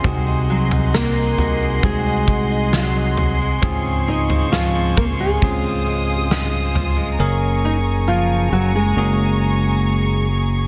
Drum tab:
SD |----o-------o---|----o-------o---|----------------|
FT |o--o--o-o-----o-|o--o--o-o-----o-|----------------|
BD |o-------o-o-----|o-----o-o-------|----------------|